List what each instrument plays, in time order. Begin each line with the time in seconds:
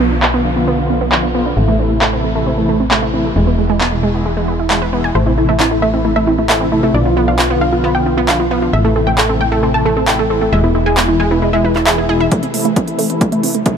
Already playing: analog synth bass B1, downlifter
0.00 supersaw synth D3 F3 B3 F4, synth arpeggio sound B3
0.11 synth arpeggio sound D4
0.23 synth arpeggio sound B3, clap
0.34 supersaw synth D3 F3 B3 F4, synth arpeggio sound B3
0.45 synth arpeggio sound D4
0.56 supersaw synth D3 F3 B3 F4, synth arpeggio sound B3
0.67 synth arpeggio sound B3
0.79 supersaw synth D3 F3 B3 F4, synth arpeggio sound D4
0.90 synth arpeggio sound B3
1.01 synth arpeggio sound B3
1.12 supersaw synth D3 F3 B3 F4, synth arpeggio sound D4, clap
1.23 synth arpeggio sound B3
1.35 supersaw synth D3 F3 B3 F4, synth arpeggio sound B3
1.46 synth arpeggio sound D4
1.57 analog synth bass A1, supersaw synth C3 E3 A3 E4, synth arpeggio sound A3
1.68 synth arpeggio sound A3
1.79 supersaw synth C3 E3 A3 E4, synth arpeggio sound C4
1.90 synth arpeggio sound A3
2.02 synth arpeggio sound A3, clap
2.13 supersaw synth C3 E3 A3 E4, synth arpeggio sound C4
2.24 synth arpeggio sound A3
2.35 supersaw synth C3 E3 A3 E4, synth arpeggio sound A3
2.47 synth arpeggio sound C4
2.58 supersaw synth C3 E3 A3 E4, synth arpeggio sound A3
2.69 synth arpeggio sound A3
2.80 synth arpeggio sound C4
2.91 supersaw synth C3 E3 A3 E4, synth arpeggio sound A3, clap
3.02 synth arpeggio sound A3
3.14 supersaw synth C3 E3 A3 E4, synth arpeggio sound C4
3.25 synth arpeggio sound A3
3.36 analog synth bass E1, supersaw synth B2 E3 G#3 E4, synth arpeggio sound G#3
3.47 synth arpeggio sound B3
3.58 supersaw synth B2 E3 G#3 E4, synth arpeggio sound G#3
3.70 synth arpeggio sound G#3
3.81 synth arpeggio sound B3, clap
3.92 supersaw synth B2 E3 G#3 E4, synth arpeggio sound G#3
4.03 synth arpeggio sound G#3
4.14 supersaw synth B2 E3 G#3 E4, synth arpeggio sound B3
4.26 synth arpeggio sound G#3
4.37 supersaw synth B2 E3 G#3 E4, synth arpeggio sound G#3
4.48 synth arpeggio sound B4
4.59 synth arpeggio sound E4
4.70 supersaw synth B2 E3 G#3 E4, synth arpeggio sound G#3, clap
4.82 synth arpeggio sound B4
4.93 supersaw synth B2 E3 G#3 E4, synth arpeggio sound B3
5.04 synth arpeggio sound G#5
5.15 analog synth bass A1, supersaw synth C3 A3 E4, synth arpeggio sound A3, synth pluck C5
5.26 synth arpeggio sound C4, synth pluck E4
5.38 supersaw synth C3 E3 A3 E4, synth arpeggio sound A3, synth pluck E4
5.49 synth arpeggio sound A3, synth pluck E5
5.60 synth arpeggio sound C4, synth pluck E4, clap
5.71 supersaw synth C3 E3 A3 E4, synth arpeggio sound A3, synth pluck E4
5.82 synth arpeggio sound A3, synth pluck E5
5.94 supersaw synth C3 E3 A3 E4, synth arpeggio sound C4, synth pluck E4
6.05 synth arpeggio sound A3, synth pluck E4
6.16 supersaw synth C3 E3 A3 E4, synth arpeggio sound A3, synth pluck E5
6.27 synth arpeggio sound C4, synth pluck E4
6.38 synth arpeggio sound A3, synth pluck E4
6.49 supersaw synth C3 E3 A3 E4, synth arpeggio sound A3, synth pluck E5, clap
6.61 synth arpeggio sound C4, synth pluck E4
6.72 supersaw synth C3 E3 A3 E4, synth arpeggio sound A3, synth pluck E4
6.83 synth arpeggio sound A3, synth pluck E4
6.94 analog synth bass B1, supersaw synth D3 F3 B3 F4, synth arpeggio sound D4, synth pluck D5
7.05 synth arpeggio sound B3, synth pluck F4
7.17 supersaw synth D3 F3 B3 F4, synth arpeggio sound B3, synth pluck F4
7.28 synth arpeggio sound D4, synth pluck F5
7.39 synth arpeggio sound B3, synth pluck F4, clap
7.50 supersaw synth D3 F3 B3 F4, synth arpeggio sound B3, synth pluck F4
7.61 synth arpeggio sound D4, synth pluck F5
7.73 supersaw synth D3 F3 B3 F4, synth arpeggio sound B3, synth pluck F4
7.84 synth arpeggio sound B3, synth pluck F4
7.95 supersaw synth D3 F3 B3 F4, synth arpeggio sound D4, synth pluck G5
8.06 synth arpeggio sound B3, synth pluck F4
8.17 synth arpeggio sound B3, synth pluck F4
8.29 supersaw synth D3 F3 B3 F4, synth arpeggio sound D4, synth pluck F5, clap
8.40 synth arpeggio sound B3, synth pluck F4
8.51 supersaw synth D3 F3 B3 F4, synth arpeggio sound B3, synth pluck F4
8.62 synth arpeggio sound D4, synth pluck F4
8.73 analog synth bass A1, supersaw synth C3 E3 A3 E4, synth arpeggio sound A3, synth pluck E5
8.85 synth arpeggio sound A3, synth pluck A4
8.96 supersaw synth C3 E3 A3 E4, synth arpeggio sound C4, synth pluck A4
9.07 synth arpeggio sound A3, synth pluck G5
9.18 synth arpeggio sound A3, synth pluck A4, clap
9.29 supersaw synth C3 E3 A3 E4, synth arpeggio sound C4, synth pluck A4
9.41 synth arpeggio sound A3, synth pluck G5
9.52 supersaw synth C3 E3 A3 E4, synth arpeggio sound A3, synth pluck A4
9.63 synth arpeggio sound C4, synth pluck A4
9.74 supersaw synth C3 E3 A3 E4, synth arpeggio sound A3, synth pluck A5
9.86 synth arpeggio sound A3, synth pluck A4
9.97 synth arpeggio sound C4, synth pluck A4
10.08 supersaw synth C3 E3 A3 E4, synth arpeggio sound A3, synth pluck G5, clap
10.19 synth arpeggio sound A3, synth pluck A4
10.30 supersaw synth C3 E3 A3 E4, synth arpeggio sound C4, synth pluck A4
10.41 synth arpeggio sound A3, synth pluck A4
10.53 analog synth bass E1, supersaw synth B2 E3 G#3 E4, synth arpeggio sound G#3, synth pluck E5
10.64 synth arpeggio sound B3, synth pluck E4
10.75 supersaw synth B2 E3 G#3 E4, synth arpeggio sound G#3, synth pluck E4
10.86 synth arpeggio sound G#3, synth pluck G#5
10.97 synth arpeggio sound B3, synth pluck E4, clap
11.09 supersaw synth B2 E3 G#3 E4, synth arpeggio sound G#3, synth pluck E4
11.20 synth arpeggio sound G#3, synth pluck G#5
11.31 supersaw synth B2 E3 G#3 E4, synth arpeggio sound B3, synth pluck E4
11.42 synth arpeggio sound G#3, synth pluck E4
11.53 supersaw synth B2 E3 G#3 E4, synth arpeggio sound G#3, synth pluck E5
11.64 synth pluck E4, synth arpeggio sound B4
11.76 synth pluck E4, synth arpeggio sound E5, clap
11.87 supersaw synth B2 E3 G#3 E4, synth arpeggio sound G#4, synth pluck E5, clap
11.98 synth pluck E4, synth arpeggio sound G#4
12.09 supersaw synth B2 E3 G#3 E4, synth pluck E4, synth arpeggio sound G#4
12.20 synth pluck E4, synth arpeggio sound E5
12.31 supersaw synth C3 E3 A3 E4, synth arpeggio sound A3, synth pluck C5, kick, closed hi-hat, riser
12.43 synth arpeggio sound C4, synth pluck E4, closed hi-hat
12.54 supersaw synth C3 E3 A3 E4, synth arpeggio sound A3, synth pluck E4, open hi-hat
12.65 synth arpeggio sound A3, synth pluck E5, closed hi-hat
12.76 synth arpeggio sound C4, synth pluck E4, kick, closed hi-hat
12.87 supersaw synth C3 E3 A3 E4, synth arpeggio sound A3, synth pluck E4, closed hi-hat
12.98 synth arpeggio sound A3, synth pluck E5, open hi-hat
13.10 supersaw synth C3 E3 A3 E4, synth arpeggio sound C4, synth pluck E4, closed hi-hat
13.21 synth arpeggio sound A3, synth pluck E4, kick, closed hi-hat
13.32 supersaw synth C3 E3 A3 E4, synth arpeggio sound A3, synth pluck E5, closed hi-hat
13.43 synth arpeggio sound C4, synth pluck E4, open hi-hat
13.55 synth arpeggio sound A3, synth pluck E4, closed hi-hat
13.66 supersaw synth C3 E3 A3 E4, synth arpeggio sound A3, synth pluck E5, kick, closed hi-hat